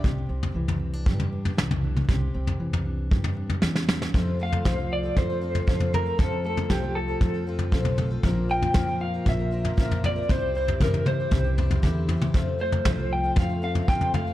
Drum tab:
SD |------------o---|------------oooo|----o-----------|----o-----------|
T2 |-------------o-o|----------------|----------------|----------------|
FT |o--o-o---o-o-o--|o--o-o---o-o----|o--oo---o--o-oo-|o--oo---o--o-oo-|
BD |o-------o-------|o-------o-------|o---o---o---o---|o---o---o---o---|

SD |----o-----------|----------------|----o-----------|
T2 |----------------|----o-o-----o--o|----------------|
FT |o--oo---o--o-oo-|o--ooo--o-oo--o-|o--oo---o--o-oo-|
BD |o---o---o---o---|o---o---o---o---|o---o---o---o---|